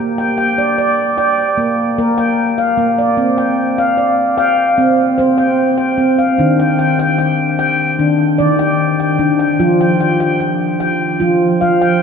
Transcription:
0.00 0.38 A#3 medium
0.00 0.17 G5 medium
0.18 0.37 G5 medium
0.38 0.99 G5 medium
0.58 0.77 D5 medium
0.78 1.17 D5 medium
1.18 1.58 D5 medium
1.18 1.79 G5 medium
1.58 1.97 A#3 medium
1.98 2.64 A#3 medium
1.98 2.59 A#4 medium
2.18 2.58 G5 medium
2.58 3.18 F5 medium
2.78 3.18 A#3 medium
2.98 3.39 D5 medium
3.17 3.58 C4 medium
3.38 3.98 G5 medium
3.78 4.19 F5 medium
3.97 4.59 D5 medium
4.38 4.78 F5 medium
4.38 4.99 G5 medium
4.78 5.18 C4 medium
5.18 5.85 C4 medium
5.18 5.79 C5 medium
5.38 5.40 G5 medium
5.78 6.38 G5 medium
5.98 6.38 C4 medium
6.19 6.59 F5 medium
6.38 7.71 D#3 medium
6.38 6.79 D4 medium
6.59 6.78 G5 medium
6.79 6.98 G5 medium
6.99 7.17 G5 medium
7.18 7.58 G5 medium
7.59 7.61 G5 medium
7.99 8.32 D#3 medium
7.99 8.39 D4 medium
8.38 9.06 D#3 medium
8.38 8.99 D5 medium
8.59 8.61 G5 medium
9.00 9.38 G5 medium
9.19 9.52 D#3 medium
9.19 9.60 D4 medium
9.39 9.80 G5 medium
9.60 10.92 F3 medium
9.60 10.00 F4 medium
9.81 9.99 G5 medium
10.01 10.19 G5 medium
10.20 10.39 G5 medium
10.40 10.79 G5 medium
10.80 10.82 G5 medium
11.20 11.54 F3 medium
11.20 11.61 F4 medium
11.61 12.03 F3 medium
11.61 12.03 F5 medium
11.81 11.83 G5 medium

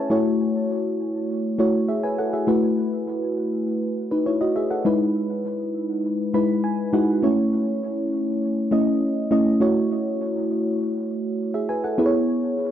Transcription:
0.00 0.12 G#4 medium
0.00 0.12 B4 medium
0.00 0.10 C#5 medium
0.00 0.13 E5 medium
0.00 0.13 G#5 medium
0.00 0.24 A5 medium
0.10 0.87 A3 medium
0.10 0.87 E4 medium
0.10 0.87 F#4 medium
0.10 0.87 C#5 medium
1.58 1.97 A3 medium
1.58 1.97 E4 medium
1.58 1.97 F#4 medium
1.58 1.89 C#5 medium
1.88 2.03 G#4 medium
1.88 2.03 E5 medium
2.03 2.18 B4 medium
2.03 2.18 G#5 medium
2.18 2.33 A4 medium
2.18 2.33 F#5 medium
2.33 2.62 G#4 medium
2.33 2.62 E5 medium
2.47 3.24 A3 medium
2.47 3.24 E4 medium
2.47 3.24 F#4 medium
2.47 3.25 B4 medium
4.11 4.26 D#4 soft
4.11 4.26 B4 medium
4.26 4.41 E4 medium
4.26 4.40 C#5 medium
4.41 4.56 F#4 medium
4.41 4.55 D#5 medium
4.56 4.70 G#4 medium
4.56 4.70 E5 medium
4.71 4.99 A4 medium
4.71 4.99 F#5 medium
4.85 5.62 G#3 medium
4.85 5.62 D#4 medium
4.85 5.62 E4 medium
4.85 5.62 B4 medium
6.34 6.72 G#3 medium
6.34 6.72 D#4 medium
6.34 6.73 E4 medium
6.34 6.73 B4 medium
6.34 6.62 B5 medium
6.64 6.92 G#5 medium
6.93 7.12 G#3 medium
6.93 7.13 D#4 medium
6.93 7.13 E4 medium
6.93 7.13 F#4 medium
6.93 7.21 F#5 medium
7.22 7.99 A3 medium
7.22 7.99 C#4 medium
7.22 8.00 E4 medium
7.22 8.00 C#5 medium
8.71 9.10 A3 medium
8.71 9.10 C#4 medium
8.71 9.10 E4 medium
8.71 9.10 D#5 medium
9.31 9.50 A3 medium
9.31 9.50 C#4 medium
9.31 9.51 E4 medium
9.31 9.51 D#5 medium
9.60 10.37 A3 medium
9.60 10.37 E4 medium
9.60 10.37 F#4 medium
9.60 10.38 C#5 medium
11.54 11.69 G#4 medium
11.54 11.68 E5 medium
11.69 11.83 B4 medium
11.69 11.83 G#5 medium
11.84 12.12 A4 medium
11.84 12.12 F#5 medium
11.98 12.71 B3 medium
11.98 12.71 E4 medium
11.98 12.71 G#4 medium
11.98 12.05 B4 medium
12.06 12.71 C#5 medium

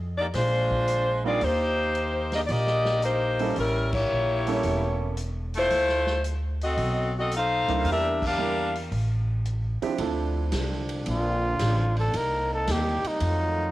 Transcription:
0.00 0.30 F2 medium
0.18 0.26 A#3 medium
0.18 0.26 D#4 medium
0.18 0.25 G4 medium
0.18 0.25 D5 medium
0.34 1.37 A#1 loud
0.34 1.22 G#3 medium
0.34 1.22 D4 medium
0.34 1.22 F4 medium
0.34 1.21 C5 loud
0.34 snare soft
0.34 open hi-hat medium
0.71 kick medium
0.88 closed hi-hat medium
1.24 1.39 G3 medium
1.24 1.40 A#3 medium
1.24 1.42 C4 medium
1.24 1.40 D4 medium
1.24 1.40 D#4 medium
1.24 1.40 F4 medium
1.24 1.42 F4 medium
1.24 1.42 G#4 medium
1.24 1.42 D5 medium
1.41 2.45 D#2 medium
1.41 2.33 A#3 medium
1.41 2.32 D#4 medium
1.41 2.32 G4 medium
1.41 2.33 C5 loud
1.41 open hi-hat soft
1.95 closed hi-hat medium
2.32 2.39 A#3 medium
2.32 2.39 D4 medium
2.32 2.39 G4 medium
2.32 2.39 D#5 medium
2.32 snare soft
2.32 open hi-hat soft
2.46 3.52 A#1 medium
2.46 2.50 D5 medium
2.46 open hi-hat soft
2.51 3.03 A#3 medium
2.51 3.03 G4 medium
2.51 3.03 D5 medium
2.51 3.03 D#5 loud
2.67 snare soft
2.85 snare soft
3.02 3.53 A#3 medium
3.02 3.53 D#4 medium
3.02 3.53 G4 medium
3.02 3.53 C5 medium
3.02 closed hi-hat medium
3.39 3.55 G3 medium
3.39 3.55 A#3 medium
3.39 3.55 C#4 medium
3.39 3.55 E4 medium
3.39 3.55 A4 medium
3.39 open hi-hat soft
3.56 4.06 A1 medium
3.56 3.94 G3 medium
3.56 3.94 C#4 medium
3.56 3.93 E4 medium
3.56 3.94 A#4 medium
3.56 open hi-hat soft
3.93 5.13 A#3 medium
3.93 5.13 E4 medium
3.93 5.14 G4 medium
3.93 5.13 C#5 medium
3.93 kick medium
3.93 crash medium
4.11 4.60 A#1 medium
4.47 5.14 G3 medium
4.47 5.14 A#3 medium
4.47 5.14 C#4 medium
4.47 5.14 E4 medium
4.47 5.14 A4 medium
4.47 open hi-hat soft
4.63 5.67 E1 medium
4.63 open hi-hat soft
5.17 closed hi-hat medium
5.54 6.21 A3 loud
5.54 6.21 E4 loud
5.54 6.21 F4 loud
5.54 6.22 C5 loud
5.54 open hi-hat soft
5.70 6.74 D2 medium
5.70 open hi-hat soft
5.89 snare soft
6.07 snare soft
6.24 closed hi-hat medium
6.61 7.12 C4 medium
6.61 7.12 F#4 medium
6.61 7.12 A4 medium
6.61 7.12 D#5 medium
6.61 open hi-hat soft
6.77 7.64 B1 loud
6.77 open hi-hat soft
7.19 7.32 C4 medium
7.19 7.32 F#4 medium
7.19 7.32 A4 medium
7.19 7.32 D#5 loud
7.31 closed hi-hat medium
7.36 7.87 D#4 medium
7.36 7.87 A4 medium
7.36 7.87 C5 medium
7.36 7.87 F5 loud
7.68 7.83 C#2 medium
7.68 8.35 G3 medium
7.68 8.35 A#3 medium
7.68 8.35 D4 medium
7.68 8.35 E4 medium
7.68 8.35 A#4 medium
7.68 open hi-hat soft
7.84 8.87 E2 medium
7.84 open hi-hat soft
7.90 8.22 D4 medium
7.90 8.22 G4 medium
7.90 8.22 A#4 medium
7.90 8.22 E5 medium
8.22 kick medium
8.22 crash medium
8.26 8.78 D4 medium
8.26 8.78 G4 medium
8.26 8.78 A#4 medium
8.26 8.78 F5 medium
8.38 8.71 G3 medium
8.38 8.71 A#3 soft
8.38 8.71 D4 soft
8.38 8.71 E4 soft
8.38 8.72 A#4 medium
8.75 open hi-hat soft
8.91 9.78 A1 medium
8.91 open hi-hat soft
9.45 closed hi-hat medium
9.82 9.97 F3 medium
9.82 9.97 C4 medium
9.82 9.97 D4 medium
9.82 9.97 E4 medium
9.82 9.98 G4 medium
9.82 muted upright bass stroke soft
9.82 open hi-hat soft
9.98 10.51 D2 medium
9.98 12.11 D3 medium
9.98 12.11 F3 medium
9.98 10.82 F3 medium
9.98 12.11 C4 medium
9.98 10.83 C4 soft
9.98 12.11 D4 medium
9.98 10.83 D4 medium
9.98 10.83 E4 soft
9.98 10.83 A4 medium
9.98 ride medium
10.52 11.05 C2 medium
10.52 snare medium
10.52 hi-hat pedal medium
10.52 ride medium
10.89 ride soft
11.06 11.58 A#1 medium
11.06 11.94 F4 medium
11.06 ride medium
11.59 12.12 A1 loud
11.59 snare medium
11.59 hi-hat pedal medium
11.59 ride medium
11.96 12.18 A4 medium
11.96 ride soft
12.13 12.66 C2 medium
12.13 13.20 C3 medium
12.13 13.20 G3 medium
12.13 13.20 A#3 medium
12.13 13.20 D#4 medium
12.13 12.52 A#4 medium
12.13 ride medium
12.53 12.73 A4 medium
12.67 13.02 D#2 medium
12.67 snare medium
12.67 hi-hat pedal medium
12.67 ride medium
12.71 13.09 G4 medium
13.04 13.71 D#4 medium
13.04 muted upright bass stroke soft
13.04 ride soft
13.20 13.71 F2 medium
13.20 13.71 D#3 medium
13.20 13.71 F#3 medium
13.20 13.71 A3 medium
13.20 13.71 F4 medium
13.20 ride medium

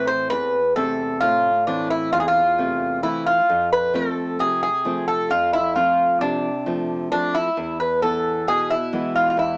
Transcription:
0.00 0.29 A2 medium
0.00 0.59 E3 soft
0.00 0.59 A3 soft
0.00 0.59 C4 soft
0.07 0.29 C5 medium
0.30 1.19 E2 medium
0.30 0.73 B4 medium
0.76 1.49 C3 soft
0.76 1.49 A3 soft
0.76 1.50 C4 medium
0.76 1.18 A4 medium
1.20 2.10 A2 medium
1.20 1.63 F4 medium
1.67 2.40 E3 soft
1.67 2.40 A3 soft
1.67 2.41 C4 soft
1.67 1.90 D4 medium
1.90 2.11 E4 medium
2.12 3.01 E2 medium
2.12 2.19 F4 medium
2.20 2.27 G#4 medium
2.28 3.00 F4 medium
2.58 3.31 C3 soft
2.58 3.02 A3 soft
2.58 3.03 C4 soft
3.03 3.40 E3 soft
3.03 3.40 A3 soft
3.03 3.40 C4 soft
3.03 3.26 E4 medium
3.26 3.69 F4 medium
3.49 4.37 F2 medium
3.73 3.93 B4 medium
3.94 4.67 F3 soft
3.94 4.67 A3 soft
3.94 4.67 C4 soft
3.94 4.37 A4 medium
4.39 5.27 C3 medium
4.39 4.61 G#4 medium
4.63 5.07 G#4 medium
4.85 5.58 F3 soft
4.85 5.58 A3 soft
4.85 5.58 C4 soft
5.08 5.29 A4 medium
5.30 6.18 F2 medium
5.30 5.52 F4 medium
5.53 5.74 E4 medium
5.75 6.48 F3 soft
5.75 6.48 A3 soft
5.75 6.49 C4 soft
5.75 6.18 F4 medium
6.21 7.09 C3 medium
6.21 7.11 D4 medium
6.66 7.10 F3 soft
6.66 7.11 A3 soft
6.66 7.11 C4 soft
7.12 7.48 F3 soft
7.12 7.48 A3 soft
7.12 7.48 C4 soft
7.12 7.35 D4 medium
7.35 7.77 E4 medium
7.57 8.45 E2 medium
7.80 8.01 B4 medium
8.02 8.74 E3 soft
8.02 8.75 B3 soft
8.02 8.48 A4 medium
8.47 9.35 B2 medium
8.47 8.71 G#4 medium
8.70 9.15 E4 medium
8.93 9.57 E3 soft
8.93 9.57 G#3 soft
8.93 9.57 B3 soft
9.15 9.29 F4 medium
9.30 9.37 F4 soft
9.37 9.57 E2 medium
9.37 9.57 E4 medium

